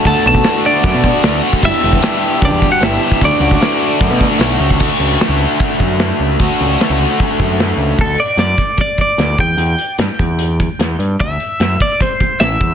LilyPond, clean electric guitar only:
\new Staff \with { instrumentName = "Clean electric guitar" } { \time 4/4 \key d \major \tempo 4 = 151 a''8 a''4 d''2 r8 | e''2 \tuplet 3/2 { d''4 fis''8 } e''4 | d''2. r4 | r1 |
r1 | \key d \mixolydian a'8 d''8 d''4 d''8 d''4 g''8~ | g''4 r2. | e''4. d''8 c''4 e''4 | }